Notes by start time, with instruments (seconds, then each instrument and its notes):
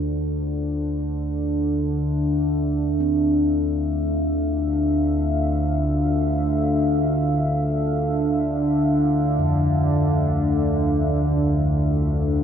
Already playing: synth drone D2 D3, ambient pad D4 A4 C5, singing bowl F4
1.34 ambient pad E5
2.22 ambient pad F5
3.00 kettle gongs C4
9.39 kettle gongs F2